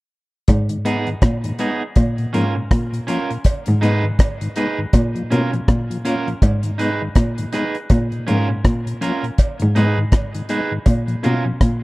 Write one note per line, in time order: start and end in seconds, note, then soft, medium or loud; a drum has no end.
0.48 1.19 G#2 loud
0.48 kick loud
0.48 closed hi-hat medium
0.48 cowbell medium
0.69 0.78 G#2 medium
0.69 0.78 D#3 medium
0.69 closed hi-hat medium
0.85 0.96 G#3 medium
0.85 1.07 B3 medium
0.85 0.96 B3 medium
0.85 0.97 D#4 medium
0.85 1.08 D#4 medium
0.85 1.08 G#4 medium
0.85 closed hi-hat medium
1.07 1.15 G#2 medium
1.07 1.15 D#3 medium
1.07 closed hi-hat soft
1.22 1.57 A#2 medium
1.22 kick loud
1.22 cross-stick loud
1.22 closed hi-hat medium
1.22 cowbell medium
1.44 1.52 G#2 medium
1.44 1.52 D#3 medium
1.44 closed hi-hat medium
1.59 1.71 G#3 medium
1.59 1.82 B3 medium
1.59 1.71 B3 medium
1.59 1.82 D#4 medium
1.59 1.71 D#4 medium
1.59 1.82 G#4 medium
1.59 closed hi-hat medium
1.96 2.31 A#2 loud
1.96 kick loud
1.96 closed hi-hat medium
1.96 cowbell medium
2.18 2.26 A#2 medium
2.18 closed hi-hat soft
2.33 2.55 G#2 medium
2.33 2.45 F3 medium
2.33 2.45 A#3 medium
2.33 2.56 C#4 medium
2.33 2.45 C#4 medium
2.33 2.55 F4 medium
2.33 2.54 A#4 medium
2.33 closed hi-hat medium
2.55 2.63 A#2 soft
2.55 muted clean electric guitar stroke soft
2.71 3.06 A#2 medium
2.71 kick loud
2.71 cross-stick loud
2.71 closed hi-hat medium
2.92 3.00 A#2 medium
2.92 closed hi-hat medium
3.07 3.19 F3 medium
3.07 3.19 A#3 medium
3.07 3.30 C#4 medium
3.07 3.19 C#4 medium
3.07 3.30 F4 medium
3.07 3.30 A#4 loud
3.07 closed hi-hat medium
3.30 3.38 A#2 medium
3.30 closed hi-hat soft
3.44 kick loud
3.44 closed hi-hat medium
3.44 cowbell medium
3.66 3.75 G#2 medium
3.66 3.82 G#2 medium
3.66 3.75 D#3 soft
3.66 closed hi-hat medium
3.81 4.53 G#2 medium
3.81 3.93 G#3 medium
3.81 3.93 B3 medium
3.81 4.04 D#4 medium
3.81 3.94 D#4 medium
3.81 4.04 G#4 medium
3.81 4.05 B4 loud
3.81 closed hi-hat medium
4.03 4.11 G#2 medium
4.03 4.12 D#3 medium
4.19 kick loud
4.19 cross-stick loud
4.19 closed hi-hat medium
4.19 cowbell medium
4.41 4.49 G#2 medium
4.41 4.49 D#3 medium
4.41 closed hi-hat medium
4.56 4.67 G#3 medium
4.56 4.68 B3 medium
4.56 4.79 D#4 medium
4.56 4.68 D#4 medium
4.56 4.79 G#4 medium
4.56 4.79 B4 medium
4.56 closed hi-hat medium
4.78 4.86 G#2 medium
4.78 4.86 D#3 medium
4.93 5.28 A#2 loud
4.93 kick loud
4.93 closed hi-hat medium
4.93 cowbell medium
5.15 5.23 A#2 soft
5.15 5.23 F3 soft
5.15 closed hi-hat soft
5.30 5.52 B2 medium
5.30 5.42 A#3 medium
5.30 5.53 C#4 medium
5.30 5.42 C#4 medium
5.30 5.52 F4 medium
5.30 5.42 F4 medium
5.30 5.51 A#4 medium
5.30 closed hi-hat medium
5.52 5.61 A#2 medium
5.52 5.61 F3 medium
5.52 muted clean electric guitar stroke soft
5.52 closed hi-hat soft
5.68 6.38 A#2 loud
5.68 kick loud
5.68 cross-stick loud
5.68 closed hi-hat medium
5.90 5.98 A#2 medium
5.90 5.98 F3 medium
5.90 closed hi-hat medium
6.05 6.16 A#3 medium
6.05 6.16 C#4 medium
6.05 6.27 C#4 medium
6.05 6.16 F4 medium
6.05 6.27 F4 medium
6.05 6.28 A#4 medium
6.05 closed hi-hat medium
6.27 6.35 A#2 medium
6.27 6.35 F3 medium
6.27 closed hi-hat soft
6.42 7.12 G#2 loud
6.42 kick loud
6.42 closed hi-hat medium
6.42 cowbell medium
6.63 6.72 G#2 medium
6.63 6.72 D#3 medium
6.63 closed hi-hat medium
6.78 6.90 G#3 medium
6.78 6.90 B3 medium
6.78 7.01 D#4 medium
6.78 6.90 D#4 medium
6.78 7.01 G#4 medium
6.78 7.01 B4 loud
6.78 closed hi-hat medium
7.01 7.09 G#2 medium
7.01 7.09 D#3 medium
7.15 7.51 A#2 medium
7.15 kick loud
7.15 cross-stick loud
7.15 closed hi-hat medium
7.15 cowbell medium
7.38 7.46 G#2 medium
7.38 7.46 D#3 medium
7.38 closed hi-hat medium
7.53 7.64 G#3 medium
7.53 7.64 B3 medium
7.53 7.75 D#4 medium
7.53 7.65 D#4 medium
7.53 7.75 G#4 medium
7.53 7.76 B4 medium
7.53 cross-stick medium
7.53 closed hi-hat medium
7.75 closed hi-hat soft
7.90 8.25 A#2 loud
7.90 kick loud
7.90 closed hi-hat medium
7.90 cowbell medium
8.12 8.20 A#2 medium
8.12 closed hi-hat soft
8.27 8.49 G#2 medium
8.27 8.38 F3 medium
8.27 8.38 A#3 medium
8.27 8.49 C#4 medium
8.27 8.39 C#4 medium
8.27 8.49 F4 medium
8.27 8.48 A#4 loud
8.27 closed hi-hat medium
8.49 8.57 A#2 medium
8.49 muted clean electric guitar stroke soft
8.65 8.99 A#2 medium
8.65 kick loud
8.65 cross-stick loud
8.65 closed hi-hat medium
8.86 8.94 A#2 medium
8.86 closed hi-hat medium
9.01 9.12 F3 medium
9.01 9.12 A#3 medium
9.01 9.24 C#4 medium
9.01 9.13 C#4 medium
9.01 9.24 F4 medium
9.01 9.24 A#4 medium
9.01 closed hi-hat medium
9.23 9.31 A#2 medium
9.23 closed hi-hat soft
9.38 kick loud
9.38 closed hi-hat medium
9.38 cowbell medium
9.60 9.68 G#2 medium
9.60 9.75 G#2 medium
9.60 9.68 D#3 medium
9.60 closed hi-hat medium
9.75 10.46 G#2 loud
9.75 9.86 G#3 medium
9.75 9.87 B3 medium
9.75 9.98 D#4 medium
9.75 9.87 D#4 medium
9.75 9.98 G#4 medium
9.75 9.98 B4 medium
9.75 closed hi-hat medium
9.97 10.05 G#2 medium
9.97 10.05 D#3 medium
10.12 kick loud
10.12 cross-stick loud
10.12 closed hi-hat medium
10.12 cowbell medium
10.35 10.42 G#2 medium
10.35 10.42 D#3 soft
10.35 closed hi-hat medium
10.49 10.61 G#3 medium
10.49 10.61 B3 medium
10.49 10.72 D#4 medium
10.49 10.61 D#4 medium
10.49 10.72 G#4 medium
10.49 10.72 B4 medium
10.49 closed hi-hat medium
10.71 10.79 G#2 medium
10.71 10.79 D#3 medium
10.86 11.21 A#2 medium
10.86 kick loud
10.86 closed hi-hat medium
10.86 cowbell medium
11.08 11.16 A#2 medium
11.08 11.16 F3 soft
11.08 closed hi-hat soft
11.23 11.45 B2 medium
11.23 11.34 A#3 medium
11.23 11.34 C#4 medium
11.23 11.46 C#4 medium
11.23 11.35 F4 medium
11.23 11.45 F4 medium
11.23 11.44 A#4 medium
11.23 closed hi-hat medium
11.45 11.53 A#2 medium
11.45 11.53 F3 medium
11.45 muted clean electric guitar stroke medium
11.61 11.83 A#2 medium
11.61 kick loud
11.61 cross-stick loud
11.61 closed hi-hat medium